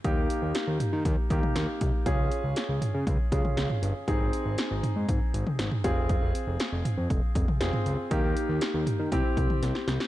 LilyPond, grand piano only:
\new Staff \with { instrumentName = "Grand piano" } { \time 4/4 \key f \minor \tempo 4 = 119 <bes ees' g'>2~ <bes ees' g'>8 <bes ees' g'>4. | <des' f' aes'>2~ <des' f' aes'>8 <des' f' aes'>4. | <c' ees' aes'>2.~ <c' ees' aes'>8 <c' f' aes'>8~ | <c' f' aes'>2. <c' f' aes'>4 |
<bes ees' g'>2 <c' e' g'>2 | }